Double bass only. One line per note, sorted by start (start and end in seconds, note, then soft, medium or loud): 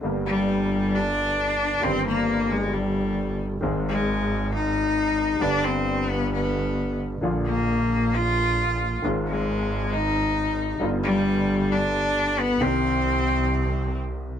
0.04 1.75 G1 medium
1.84 3.54 G1 medium
3.63 5.33 G#1 medium
5.41 7.14 G1 medium
7.23 8.94 A#1 medium
9.04 10.73 G#1 medium
10.81 12.52 G1 medium
12.61 14.35 C2 medium